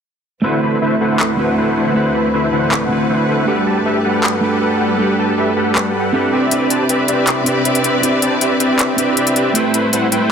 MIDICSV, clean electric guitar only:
0, 0, Header, 1, 2, 480
1, 0, Start_track
1, 0, Tempo, 379747
1, 554, Time_signature, 4, 2, 24, 8
1, 13043, End_track
2, 0, Start_track
2, 0, Title_t, "Clean electric guitar"
2, 0, Program_c, 0, 27
2, 526, Note_on_c, 0, 57, 68
2, 539, Note_on_c, 0, 60, 60
2, 552, Note_on_c, 0, 64, 60
2, 565, Note_on_c, 0, 66, 56
2, 577, Note_on_c, 0, 71, 69
2, 1712, Note_off_c, 0, 57, 0
2, 1718, Note_off_c, 0, 60, 0
2, 1725, Note_off_c, 0, 64, 0
2, 1727, Note_on_c, 0, 57, 73
2, 1731, Note_off_c, 0, 66, 0
2, 1737, Note_off_c, 0, 71, 0
2, 1740, Note_on_c, 0, 60, 68
2, 1752, Note_on_c, 0, 64, 68
2, 1764, Note_on_c, 0, 66, 67
2, 1777, Note_on_c, 0, 71, 82
2, 2432, Note_off_c, 0, 57, 0
2, 2439, Note_off_c, 0, 60, 0
2, 2445, Note_off_c, 0, 64, 0
2, 2448, Note_on_c, 0, 57, 66
2, 2451, Note_off_c, 0, 66, 0
2, 2457, Note_off_c, 0, 71, 0
2, 2460, Note_on_c, 0, 60, 59
2, 2472, Note_on_c, 0, 64, 62
2, 2484, Note_on_c, 0, 66, 59
2, 2498, Note_on_c, 0, 71, 74
2, 3633, Note_off_c, 0, 57, 0
2, 3639, Note_off_c, 0, 60, 0
2, 3645, Note_off_c, 0, 64, 0
2, 3649, Note_on_c, 0, 57, 75
2, 3651, Note_off_c, 0, 66, 0
2, 3658, Note_off_c, 0, 71, 0
2, 3660, Note_on_c, 0, 60, 70
2, 3674, Note_on_c, 0, 64, 67
2, 3686, Note_on_c, 0, 66, 66
2, 3699, Note_on_c, 0, 71, 79
2, 4353, Note_off_c, 0, 57, 0
2, 4359, Note_off_c, 0, 60, 0
2, 4366, Note_off_c, 0, 64, 0
2, 4369, Note_on_c, 0, 57, 64
2, 4372, Note_off_c, 0, 66, 0
2, 4378, Note_off_c, 0, 71, 0
2, 4382, Note_on_c, 0, 62, 58
2, 4395, Note_on_c, 0, 66, 64
2, 4408, Note_on_c, 0, 67, 61
2, 4420, Note_on_c, 0, 71, 75
2, 5554, Note_off_c, 0, 57, 0
2, 5560, Note_off_c, 0, 62, 0
2, 5566, Note_off_c, 0, 66, 0
2, 5570, Note_on_c, 0, 57, 77
2, 5573, Note_off_c, 0, 67, 0
2, 5579, Note_off_c, 0, 71, 0
2, 5584, Note_on_c, 0, 62, 70
2, 5595, Note_on_c, 0, 66, 68
2, 5608, Note_on_c, 0, 67, 71
2, 5620, Note_on_c, 0, 71, 83
2, 6274, Note_off_c, 0, 57, 0
2, 6281, Note_off_c, 0, 62, 0
2, 6287, Note_off_c, 0, 66, 0
2, 6289, Note_on_c, 0, 57, 69
2, 6293, Note_off_c, 0, 67, 0
2, 6299, Note_off_c, 0, 71, 0
2, 6302, Note_on_c, 0, 62, 61
2, 6315, Note_on_c, 0, 66, 59
2, 6327, Note_on_c, 0, 67, 61
2, 6340, Note_on_c, 0, 71, 69
2, 7473, Note_off_c, 0, 57, 0
2, 7480, Note_off_c, 0, 62, 0
2, 7486, Note_off_c, 0, 66, 0
2, 7493, Note_off_c, 0, 67, 0
2, 7499, Note_off_c, 0, 71, 0
2, 7744, Note_on_c, 0, 60, 81
2, 7751, Note_on_c, 0, 62, 70
2, 7755, Note_on_c, 0, 64, 70
2, 7761, Note_on_c, 0, 67, 74
2, 7768, Note_on_c, 0, 69, 90
2, 8194, Note_off_c, 0, 60, 0
2, 8203, Note_off_c, 0, 62, 0
2, 8207, Note_off_c, 0, 64, 0
2, 8209, Note_on_c, 0, 60, 65
2, 8210, Note_off_c, 0, 67, 0
2, 8213, Note_off_c, 0, 69, 0
2, 8223, Note_on_c, 0, 62, 59
2, 8235, Note_on_c, 0, 64, 64
2, 8247, Note_on_c, 0, 67, 63
2, 8261, Note_on_c, 0, 71, 71
2, 9394, Note_off_c, 0, 60, 0
2, 9400, Note_off_c, 0, 62, 0
2, 9406, Note_off_c, 0, 64, 0
2, 9407, Note_on_c, 0, 60, 76
2, 9413, Note_off_c, 0, 67, 0
2, 9419, Note_off_c, 0, 71, 0
2, 9420, Note_on_c, 0, 62, 72
2, 9433, Note_on_c, 0, 64, 68
2, 9445, Note_on_c, 0, 67, 71
2, 9459, Note_on_c, 0, 71, 84
2, 10113, Note_off_c, 0, 60, 0
2, 10119, Note_off_c, 0, 62, 0
2, 10126, Note_off_c, 0, 64, 0
2, 10126, Note_on_c, 0, 60, 68
2, 10132, Note_off_c, 0, 67, 0
2, 10138, Note_off_c, 0, 71, 0
2, 10140, Note_on_c, 0, 62, 65
2, 10153, Note_on_c, 0, 64, 62
2, 10165, Note_on_c, 0, 67, 58
2, 10178, Note_on_c, 0, 71, 73
2, 11312, Note_off_c, 0, 60, 0
2, 11319, Note_off_c, 0, 62, 0
2, 11326, Note_off_c, 0, 64, 0
2, 11329, Note_on_c, 0, 60, 76
2, 11332, Note_off_c, 0, 67, 0
2, 11338, Note_off_c, 0, 71, 0
2, 11341, Note_on_c, 0, 62, 71
2, 11354, Note_on_c, 0, 64, 72
2, 11367, Note_on_c, 0, 67, 68
2, 11380, Note_on_c, 0, 71, 85
2, 12034, Note_off_c, 0, 60, 0
2, 12040, Note_off_c, 0, 62, 0
2, 12046, Note_off_c, 0, 64, 0
2, 12048, Note_on_c, 0, 57, 67
2, 12053, Note_off_c, 0, 67, 0
2, 12059, Note_off_c, 0, 71, 0
2, 12061, Note_on_c, 0, 60, 62
2, 12073, Note_on_c, 0, 64, 62
2, 12086, Note_on_c, 0, 67, 61
2, 12099, Note_on_c, 0, 71, 76
2, 13043, Note_off_c, 0, 57, 0
2, 13043, Note_off_c, 0, 60, 0
2, 13043, Note_off_c, 0, 64, 0
2, 13043, Note_off_c, 0, 67, 0
2, 13043, Note_off_c, 0, 71, 0
2, 13043, End_track
0, 0, End_of_file